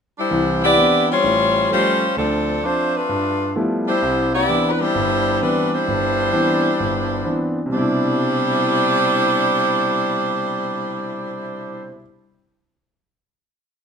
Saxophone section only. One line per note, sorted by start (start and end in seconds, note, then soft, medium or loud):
0.18 0.60 G3 medium
0.18 0.59 D4 medium
0.18 0.60 E4 medium
0.18 0.60 C5 medium
0.64 1.06 B3 medium
0.64 1.06 E4 medium
0.64 1.06 G4 medium
0.64 1.06 D5 loud
1.11 1.71 G3 medium
1.11 1.71 F4 medium
1.11 1.70 C5 medium
1.11 1.71 C#5 medium
1.71 2.14 G3 medium
1.71 2.14 C#4 medium
1.71 2.14 F4 medium
1.71 2.13 C5 medium
2.18 2.63 F3 medium
2.18 2.63 C4 medium
2.18 2.62 D4 medium
2.18 2.63 A4 medium
2.63 2.94 A3 medium
2.63 2.94 D4 medium
2.63 2.94 F4 medium
2.63 2.94 C5 medium
2.95 3.56 A3 medium
2.95 3.56 D4 medium
2.95 3.56 F4 medium
2.95 3.56 B4 medium
3.87 4.30 G3 medium
3.87 4.30 D4 medium
3.87 4.30 E4 medium
3.87 4.30 C5 medium
4.34 4.68 B3 medium
4.34 4.68 E4 medium
4.34 4.68 G4 medium
4.34 4.68 D5 loud
4.70 4.79 B4 medium
4.80 5.40 G3 medium
4.80 5.40 D4 medium
4.80 5.40 E4 medium
4.80 5.41 C5 loud
5.41 5.71 G3 medium
5.41 5.71 D4 medium
5.41 5.71 E4 medium
5.41 5.72 B4 medium
5.72 7.56 G3 medium
5.72 7.56 D4 medium
5.72 7.56 E4 medium
5.72 7.56 C5 medium
7.72 11.90 G3 medium
7.72 11.90 D4 medium
7.72 11.91 E4 medium
7.72 11.91 C5 medium